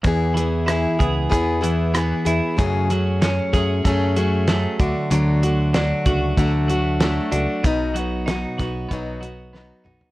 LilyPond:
<<
  \new Staff \with { instrumentName = "Steel-string acoustic guitar" } { \time 4/4 \key e \major \tempo 4 = 95 <e b e' gis'>8 <b e' gis'>8 <e b e' gis'>8 <b e' gis'>8 <e b e' gis'>8 <b e' gis'>8 <e b e' gis'>8 <b e' gis'>8 | <fis, cis fis a cis' gis'>8 <fis a cis' gis'>8 <fis a cis' gis'>8 <fis a cis' gis'>8 <fis, cis fis a cis' gis'>8 <fis a cis' gis'>8 <fis a cis' gis'>8 <a d' fis'>8 | <d fis a d' fis'>8 <a d' fis'>8 <fis a d' fis'>8 <a d' fis'>8 <d fis a d' fis'>8 <a d' fis'>8 <fis a d' fis'>8 <a d' fis'>8 | <b, fis b dis' fis'>8 <b dis' fis'>8 <fis b dis' fis'>8 <b dis' fis'>8 <b, fis b dis' fis'>8 <b dis' fis'>8 <fis b dis' fis'>8 <b dis' fis'>8 | }
  \new Staff \with { instrumentName = "Clean electric guitar" } { \time 4/4 \key e \major e,8 e8 e'8 gis'8 b8 e8 b8 e'8 | fis,8 fis8 cis'8 gis'8 a8 fis8 a8 d8 | d8 fis8 d'8 fis'8 a8 fis8 a8 d'8 | b,8 fis8 dis'8 fis'8 b8 fis8 b8 dis'8 | }
  \new Staff \with { instrumentName = "Fingered electric bass" } { \clef bass \time 4/4 \key e \major e,4. cis,8 e,4. e,16 r16 | fis,4. fis,8 fis,4. d,16 r16 | d,4. cis,8 d,4. cis,16 r16 | b,,4. b,,8 b,,4. b,,16 r16 | }
  \new DrumStaff \with { instrumentName = "Drums" } \drummode { \time 4/4 <hh bd>8 hh8 <hh ss>8 <hh bd>8 <hh bd>8 hh8 <hh ss>8 hh8 | <hh bd>8 hh8 <hh sn>8 <hh bd sn>8 <hh bd>8 hh8 <hh sn>8 <hh bd>8 | hh8 hh8 <hh sn>8 <hh bd>8 <hh bd>8 hh8 <hh sn>8 hh8 | <hh bd>8 hh8 <hh sn>8 <hh bd sn>8 <hh bd>8 hh8 sn8 toml16 tomfh16 | }
>>